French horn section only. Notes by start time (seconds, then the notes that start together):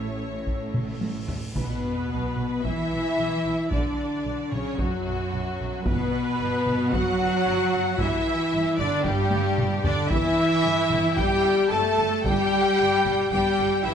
Already playing: C#4
1.54 B3
2.63 E4
3.70 D4
4.51 C#4
4.78 F#3
5.84 B3
6.93 F#4
8.00 E4
8.79 D4
9.06 G3
9.84 D4
10.10 E4
11.17 G4
11.69 A4
12.22 G4
13.31 G4
13.84 E4